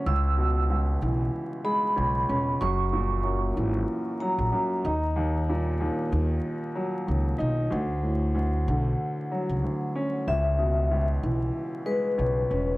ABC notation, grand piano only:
X:1
M:4/4
L:1/8
Q:"Swing 16ths" 1/4=94
K:C#dor
V:1 name="Grand piano" clef=bass
C,, B,, C,, E,2 G, C,, C | F,, A,, F,, E,2 F, F,, D | D,, A,, D,, D,2 F, D,, D | =D,, =A,, D,, =D,2 F, D,, C |
C,, B,, C,, E,2 G, C,, C |]